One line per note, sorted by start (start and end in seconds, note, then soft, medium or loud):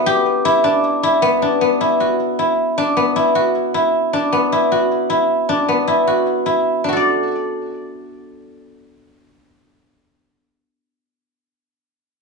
0.00 1.22 B3 medium
0.00 0.64 D4 medium
0.00 0.45 E4 medium
0.00 0.12 F#4 medium
0.00 0.92 A4 loud
0.06 2.06 G4 loud
0.45 1.03 E4 medium
0.64 1.42 D4 medium
1.03 1.80 E4 medium
1.22 1.61 B3 medium
1.42 2.77 D4 medium
1.61 2.96 B3 medium
1.81 2.39 E4 medium
2.00 3.35 F#4 medium
2.39 3.15 E4 medium
2.78 4.13 D4 medium
2.97 4.32 B3 medium
3.16 3.74 E4 medium
3.35 4.71 F#4 medium
3.74 4.52 E4 medium
4.13 5.49 D4 medium
4.32 5.68 B3 medium
4.52 5.09 E4 medium
4.72 6.07 F#4 medium
5.10 5.87 E4 medium
5.49 6.84 D4 medium
5.68 8.79 B3 medium
5.88 6.46 E4 medium
6.07 6.88 F#4 medium
6.46 9.07 E4 medium
6.84 11.02 D4 medium
6.89 11.04 F#4 medium
6.89 11.06 A4 medium
6.97 11.08 D5 medium